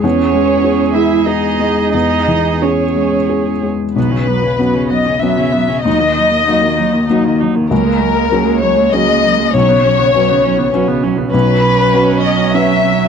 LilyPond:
<<
  \new Staff \with { instrumentName = "Violin section" } { \time 3/4 \key b \major \tempo 4 = 98 cis''4. e''8 dis''4 | dis''4 cis''4. r8 | b'4. dis''8 e''4 | dis''2~ dis''8 r8 |
ais'4. cis''8 dis''4 | cis''2~ cis''8 r8 | b'4. dis''8 e''4 | }
  \new Staff \with { instrumentName = "Felt piano" } { \time 3/4 \key b \major e,8 gis8 gis'8 gis8 gis'8 gis8 | e,8 e8 gis'8 gis8 gis'8 gis8 | b,,4 <b cis' fis'>4 <b cis' fis'>4 | dis,4 <ais dis' fis'>4 <ais dis' fis'>4 |
cis,4 <cis' fis' gis'>4 <cis' fis' gis'>4 | b,,4 <cis' fis' b'>4 <cis' fis' b'>4 | b,,4 <cis' fis' b'>4 <cis' fis' b'>4 | }
  \new Staff \with { instrumentName = "Viola" } { \time 3/4 \key b \major gis'2.~ | gis'2~ gis'8 r8 | b16 cis'16 b16 cis'16 b16 cis'16 b16 cis'16 b16 cis'16 b16 cis'16 | dis'16 ais16 dis'16 ais16 dis'16 ais16 dis'16 ais16 dis'16 ais16 dis'16 ais16 |
ais16 gis16 ais16 gis16 ais16 gis16 ais16 gis16 ais16 gis16 ais16 gis16 | cis'16 b16 cis'16 b16 cis'16 b16 cis'16 b16 cis'16 b16 cis'16 b16 | cis'2. | }
  \new Staff \with { instrumentName = "Cello" } { \clef bass \time 3/4 \key b \major cis'4. e'8 dis'4 | dis'4 cis'4. r8 | fis16 cis16 fis16 cis16 fis16 cis16 fis16 cis16 fis16 cis16 fis16 cis16 | fis16 dis16 fis16 dis16 fis16 dis16 fis16 dis16 fis16 dis16 fis16 dis16 |
fis16 ais16 fis16 ais16 fis16 ais16 fis16 ais16 fis16 ais16 fis16 ais16 | fis16 cis16 fis16 cis16 fis16 cis16 fis16 cis16 fis16 cis16 fis16 cis16 | fis2. | }
>>